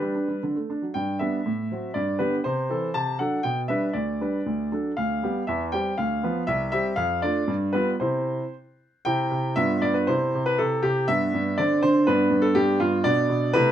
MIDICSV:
0, 0, Header, 1, 2, 480
1, 0, Start_track
1, 0, Key_signature, 1, "major"
1, 0, Tempo, 525394
1, 868, Time_signature, 2, 2, 24, 8
1, 1331, Tempo, 502092
1, 4694, Key_signature, 0, "major"
1, 7091, Tempo, 518135
1, 9971, Tempo, 493016
1, 13016, End_track
2, 0, Start_track
2, 0, Title_t, "Grand piano"
2, 0, Program_c, 0, 0
2, 0, Note_on_c, 0, 62, 42
2, 0, Note_on_c, 0, 67, 42
2, 0, Note_on_c, 0, 71, 55
2, 17, Note_on_c, 0, 55, 33
2, 125, Note_off_c, 0, 62, 0
2, 139, Note_on_c, 0, 62, 28
2, 145, Note_off_c, 0, 55, 0
2, 257, Note_on_c, 0, 55, 28
2, 267, Note_off_c, 0, 62, 0
2, 350, Note_off_c, 0, 67, 0
2, 377, Note_off_c, 0, 71, 0
2, 381, Note_off_c, 0, 55, 0
2, 392, Note_on_c, 0, 50, 43
2, 506, Note_off_c, 0, 50, 0
2, 511, Note_on_c, 0, 57, 32
2, 637, Note_off_c, 0, 57, 0
2, 637, Note_on_c, 0, 62, 33
2, 749, Note_on_c, 0, 54, 28
2, 760, Note_off_c, 0, 62, 0
2, 859, Note_on_c, 0, 79, 64
2, 868, Note_off_c, 0, 54, 0
2, 869, Note_on_c, 0, 43, 41
2, 1072, Note_off_c, 0, 79, 0
2, 1089, Note_on_c, 0, 76, 60
2, 1094, Note_off_c, 0, 43, 0
2, 1100, Note_on_c, 0, 55, 26
2, 1100, Note_on_c, 0, 59, 29
2, 1106, Note_on_c, 0, 62, 32
2, 1266, Note_off_c, 0, 59, 0
2, 1267, Note_off_c, 0, 55, 0
2, 1270, Note_off_c, 0, 62, 0
2, 1331, Note_on_c, 0, 45, 44
2, 1565, Note_off_c, 0, 45, 0
2, 1576, Note_on_c, 0, 54, 35
2, 1579, Note_on_c, 0, 60, 33
2, 1589, Note_on_c, 0, 66, 36
2, 1747, Note_off_c, 0, 54, 0
2, 1749, Note_off_c, 0, 60, 0
2, 1755, Note_off_c, 0, 66, 0
2, 1793, Note_on_c, 0, 74, 59
2, 1806, Note_off_c, 0, 76, 0
2, 1806, Note_on_c, 0, 43, 47
2, 2030, Note_on_c, 0, 71, 60
2, 2039, Note_off_c, 0, 43, 0
2, 2039, Note_off_c, 0, 74, 0
2, 2040, Note_on_c, 0, 50, 33
2, 2041, Note_on_c, 0, 59, 32
2, 2044, Note_on_c, 0, 67, 40
2, 2178, Note_off_c, 0, 71, 0
2, 2214, Note_off_c, 0, 50, 0
2, 2215, Note_off_c, 0, 59, 0
2, 2216, Note_off_c, 0, 67, 0
2, 2272, Note_on_c, 0, 72, 72
2, 2285, Note_on_c, 0, 48, 52
2, 2515, Note_off_c, 0, 48, 0
2, 2516, Note_on_c, 0, 52, 37
2, 2517, Note_on_c, 0, 60, 40
2, 2523, Note_on_c, 0, 69, 42
2, 2687, Note_off_c, 0, 52, 0
2, 2688, Note_off_c, 0, 60, 0
2, 2692, Note_off_c, 0, 69, 0
2, 2750, Note_off_c, 0, 72, 0
2, 2750, Note_on_c, 0, 81, 79
2, 2759, Note_on_c, 0, 48, 45
2, 2965, Note_off_c, 0, 81, 0
2, 2986, Note_off_c, 0, 48, 0
2, 2987, Note_on_c, 0, 78, 62
2, 2992, Note_on_c, 0, 54, 33
2, 2997, Note_on_c, 0, 62, 36
2, 3002, Note_on_c, 0, 69, 39
2, 3163, Note_off_c, 0, 54, 0
2, 3166, Note_off_c, 0, 62, 0
2, 3170, Note_off_c, 0, 69, 0
2, 3219, Note_on_c, 0, 79, 74
2, 3227, Note_off_c, 0, 78, 0
2, 3231, Note_on_c, 0, 47, 47
2, 3367, Note_off_c, 0, 79, 0
2, 3458, Note_on_c, 0, 76, 69
2, 3464, Note_off_c, 0, 47, 0
2, 3468, Note_on_c, 0, 55, 36
2, 3471, Note_on_c, 0, 62, 37
2, 3474, Note_on_c, 0, 71, 40
2, 3644, Note_off_c, 0, 55, 0
2, 3646, Note_off_c, 0, 62, 0
2, 3648, Note_off_c, 0, 71, 0
2, 3699, Note_on_c, 0, 74, 49
2, 3706, Note_on_c, 0, 38, 46
2, 3707, Note_off_c, 0, 76, 0
2, 3948, Note_off_c, 0, 38, 0
2, 3963, Note_on_c, 0, 55, 31
2, 3967, Note_on_c, 0, 62, 28
2, 3969, Note_on_c, 0, 71, 33
2, 4138, Note_off_c, 0, 55, 0
2, 4141, Note_off_c, 0, 62, 0
2, 4142, Note_off_c, 0, 71, 0
2, 4201, Note_on_c, 0, 38, 43
2, 4440, Note_off_c, 0, 38, 0
2, 4442, Note_off_c, 0, 74, 0
2, 4447, Note_on_c, 0, 54, 31
2, 4451, Note_on_c, 0, 62, 34
2, 4458, Note_on_c, 0, 69, 36
2, 4624, Note_off_c, 0, 54, 0
2, 4627, Note_off_c, 0, 62, 0
2, 4632, Note_off_c, 0, 69, 0
2, 4686, Note_on_c, 0, 77, 69
2, 4696, Note_on_c, 0, 38, 42
2, 4931, Note_off_c, 0, 38, 0
2, 4940, Note_on_c, 0, 55, 32
2, 4947, Note_on_c, 0, 67, 36
2, 4948, Note_on_c, 0, 59, 32
2, 5114, Note_off_c, 0, 55, 0
2, 5118, Note_off_c, 0, 59, 0
2, 5118, Note_off_c, 0, 67, 0
2, 5137, Note_off_c, 0, 77, 0
2, 5169, Note_on_c, 0, 76, 68
2, 5180, Note_on_c, 0, 40, 52
2, 5317, Note_off_c, 0, 76, 0
2, 5407, Note_on_c, 0, 79, 74
2, 5414, Note_off_c, 0, 40, 0
2, 5419, Note_on_c, 0, 55, 38
2, 5420, Note_on_c, 0, 60, 35
2, 5427, Note_on_c, 0, 67, 42
2, 5593, Note_off_c, 0, 55, 0
2, 5594, Note_off_c, 0, 60, 0
2, 5599, Note_off_c, 0, 67, 0
2, 5631, Note_off_c, 0, 79, 0
2, 5651, Note_on_c, 0, 77, 68
2, 5659, Note_on_c, 0, 38, 46
2, 5893, Note_off_c, 0, 38, 0
2, 5895, Note_on_c, 0, 53, 33
2, 5901, Note_on_c, 0, 59, 37
2, 5905, Note_on_c, 0, 71, 41
2, 6068, Note_off_c, 0, 53, 0
2, 6072, Note_off_c, 0, 59, 0
2, 6075, Note_off_c, 0, 71, 0
2, 6095, Note_off_c, 0, 77, 0
2, 6123, Note_on_c, 0, 76, 83
2, 6131, Note_on_c, 0, 36, 57
2, 6346, Note_off_c, 0, 76, 0
2, 6360, Note_on_c, 0, 76, 84
2, 6364, Note_off_c, 0, 36, 0
2, 6366, Note_on_c, 0, 55, 44
2, 6373, Note_on_c, 0, 60, 42
2, 6378, Note_on_c, 0, 67, 46
2, 6539, Note_off_c, 0, 55, 0
2, 6543, Note_off_c, 0, 60, 0
2, 6547, Note_off_c, 0, 67, 0
2, 6579, Note_off_c, 0, 76, 0
2, 6592, Note_on_c, 0, 77, 83
2, 6603, Note_on_c, 0, 41, 53
2, 6815, Note_off_c, 0, 77, 0
2, 6838, Note_off_c, 0, 41, 0
2, 6843, Note_on_c, 0, 74, 71
2, 6853, Note_on_c, 0, 62, 41
2, 6855, Note_on_c, 0, 57, 41
2, 6864, Note_on_c, 0, 65, 43
2, 7027, Note_off_c, 0, 62, 0
2, 7028, Note_off_c, 0, 57, 0
2, 7034, Note_off_c, 0, 65, 0
2, 7085, Note_on_c, 0, 43, 58
2, 7138, Note_off_c, 0, 74, 0
2, 7317, Note_on_c, 0, 71, 70
2, 7323, Note_off_c, 0, 43, 0
2, 7329, Note_on_c, 0, 55, 41
2, 7333, Note_on_c, 0, 59, 39
2, 7337, Note_on_c, 0, 65, 40
2, 7469, Note_off_c, 0, 71, 0
2, 7506, Note_off_c, 0, 55, 0
2, 7509, Note_off_c, 0, 59, 0
2, 7512, Note_off_c, 0, 65, 0
2, 7569, Note_on_c, 0, 72, 60
2, 7578, Note_on_c, 0, 48, 44
2, 7579, Note_on_c, 0, 64, 36
2, 7580, Note_on_c, 0, 60, 34
2, 7921, Note_off_c, 0, 48, 0
2, 7971, Note_off_c, 0, 60, 0
2, 7971, Note_off_c, 0, 64, 0
2, 8063, Note_off_c, 0, 72, 0
2, 8543, Note_on_c, 0, 79, 84
2, 8551, Note_on_c, 0, 64, 39
2, 8553, Note_on_c, 0, 48, 57
2, 8553, Note_on_c, 0, 60, 39
2, 8772, Note_off_c, 0, 48, 0
2, 8786, Note_on_c, 0, 48, 46
2, 8992, Note_off_c, 0, 64, 0
2, 8993, Note_off_c, 0, 60, 0
2, 9013, Note_on_c, 0, 76, 92
2, 9017, Note_off_c, 0, 48, 0
2, 9021, Note_off_c, 0, 79, 0
2, 9022, Note_on_c, 0, 43, 56
2, 9022, Note_on_c, 0, 59, 42
2, 9023, Note_on_c, 0, 65, 43
2, 9248, Note_off_c, 0, 43, 0
2, 9254, Note_on_c, 0, 74, 71
2, 9258, Note_off_c, 0, 76, 0
2, 9262, Note_on_c, 0, 43, 53
2, 9370, Note_on_c, 0, 71, 57
2, 9378, Note_off_c, 0, 74, 0
2, 9467, Note_off_c, 0, 59, 0
2, 9467, Note_off_c, 0, 65, 0
2, 9490, Note_on_c, 0, 72, 74
2, 9494, Note_off_c, 0, 43, 0
2, 9495, Note_off_c, 0, 71, 0
2, 9497, Note_on_c, 0, 60, 36
2, 9500, Note_on_c, 0, 48, 51
2, 9500, Note_on_c, 0, 64, 37
2, 9729, Note_off_c, 0, 48, 0
2, 9745, Note_on_c, 0, 48, 46
2, 9813, Note_off_c, 0, 72, 0
2, 9849, Note_on_c, 0, 71, 81
2, 9961, Note_off_c, 0, 48, 0
2, 9964, Note_on_c, 0, 69, 78
2, 9969, Note_off_c, 0, 71, 0
2, 9975, Note_on_c, 0, 48, 51
2, 10197, Note_off_c, 0, 48, 0
2, 10199, Note_on_c, 0, 67, 80
2, 10211, Note_on_c, 0, 48, 53
2, 10212, Note_off_c, 0, 69, 0
2, 10418, Note_off_c, 0, 60, 0
2, 10420, Note_off_c, 0, 64, 0
2, 10425, Note_off_c, 0, 67, 0
2, 10444, Note_on_c, 0, 76, 94
2, 10447, Note_on_c, 0, 59, 37
2, 10449, Note_off_c, 0, 48, 0
2, 10450, Note_on_c, 0, 62, 41
2, 10451, Note_on_c, 0, 43, 53
2, 10686, Note_off_c, 0, 43, 0
2, 10701, Note_on_c, 0, 43, 52
2, 10903, Note_off_c, 0, 59, 0
2, 10904, Note_off_c, 0, 62, 0
2, 10930, Note_on_c, 0, 74, 81
2, 10935, Note_off_c, 0, 43, 0
2, 10936, Note_off_c, 0, 76, 0
2, 10939, Note_on_c, 0, 60, 42
2, 10941, Note_on_c, 0, 62, 41
2, 10943, Note_on_c, 0, 50, 58
2, 11151, Note_off_c, 0, 74, 0
2, 11166, Note_off_c, 0, 50, 0
2, 11173, Note_on_c, 0, 72, 90
2, 11181, Note_on_c, 0, 50, 54
2, 11384, Note_off_c, 0, 60, 0
2, 11385, Note_off_c, 0, 62, 0
2, 11410, Note_on_c, 0, 71, 82
2, 11412, Note_off_c, 0, 50, 0
2, 11415, Note_off_c, 0, 72, 0
2, 11419, Note_on_c, 0, 59, 45
2, 11419, Note_on_c, 0, 62, 44
2, 11420, Note_on_c, 0, 43, 63
2, 11630, Note_off_c, 0, 43, 0
2, 11644, Note_on_c, 0, 43, 52
2, 11749, Note_on_c, 0, 69, 86
2, 11772, Note_off_c, 0, 71, 0
2, 11874, Note_off_c, 0, 43, 0
2, 11877, Note_on_c, 0, 67, 89
2, 11882, Note_off_c, 0, 69, 0
2, 11889, Note_on_c, 0, 43, 56
2, 12100, Note_off_c, 0, 67, 0
2, 12113, Note_off_c, 0, 43, 0
2, 12120, Note_on_c, 0, 65, 90
2, 12128, Note_on_c, 0, 43, 60
2, 12335, Note_off_c, 0, 59, 0
2, 12336, Note_off_c, 0, 62, 0
2, 12343, Note_off_c, 0, 65, 0
2, 12355, Note_on_c, 0, 74, 88
2, 12362, Note_on_c, 0, 62, 43
2, 12364, Note_off_c, 0, 43, 0
2, 12364, Note_on_c, 0, 59, 46
2, 12368, Note_on_c, 0, 47, 60
2, 12590, Note_off_c, 0, 47, 0
2, 12604, Note_on_c, 0, 47, 52
2, 12812, Note_off_c, 0, 62, 0
2, 12813, Note_off_c, 0, 59, 0
2, 12837, Note_on_c, 0, 71, 102
2, 12840, Note_off_c, 0, 47, 0
2, 12842, Note_off_c, 0, 74, 0
2, 12844, Note_on_c, 0, 57, 49
2, 12845, Note_on_c, 0, 64, 46
2, 12847, Note_on_c, 0, 48, 70
2, 13016, Note_off_c, 0, 48, 0
2, 13016, Note_off_c, 0, 57, 0
2, 13016, Note_off_c, 0, 64, 0
2, 13016, Note_off_c, 0, 71, 0
2, 13016, End_track
0, 0, End_of_file